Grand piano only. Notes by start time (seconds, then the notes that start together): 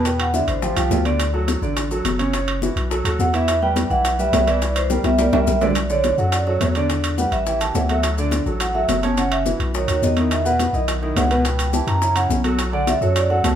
0.06 B2 B3 B4
0.34 D3 D4 E4
0.62 F3 F4 G4
0.76 F3 F4 G4
1.05 D3 D4 D5
1.34 F#3 F#4 A4
1.62 D3 D4 D5
1.91 F#3 F#4 A4
2.19 C#3 C#4 C#5
2.33 C#3 C#4 C#5
2.62 E3 E4 F#4
2.90 F#3 F#4 A4
3.05 F#3 F#4 A4
3.33 E3 E4 E5
3.62 G3 G4 B4
3.90 E3 E4 E5
4.19 G3 G4 B4
4.47 E3 E4 E5
4.62 E3 E4 E5
4.90 G3 G4 A#4
5.18 G3 G4 A#4
5.33 G3 G4 A#4
5.61 D3 D4 D5
5.90 D3 D4 D5
6.19 F#3 F#4 A4
6.47 F#3 F#4 A4
6.76 D3 D4 D5
6.90 D3 D4 D5
7.18 G3 G4 B4
7.47 E3 E4 G4
7.62 E3 E4 G4
7.90 F#3 F#4 A4
8.18 D3 D4 D5
8.46 F#3 F#4 A4
8.75 F#3 F#4 A4
9.03 C#3 C#4 C#5
9.17 C#3 C#4 C#5
9.46 E3 E4 F#4
9.75 D#3 D#4 F#4
9.89 D#3 D#4 F#4
10.17 D#3 D#4 E4
10.45 B2 B3 B4
10.73 D#3 D#4 E4
11.02 D#3 D#4 E4
11.31 B2 B3 B4
11.45 B2 B3 B4
11.73 E3 E4 G4
12.01 C#3 C#4 E4
12.15 C#3 C#4 E4
12.44 F#3 F#4 A4
12.73 D3 D4 D5
13.01 F#3 F#4 A4
13.30 F#3 F#4 A4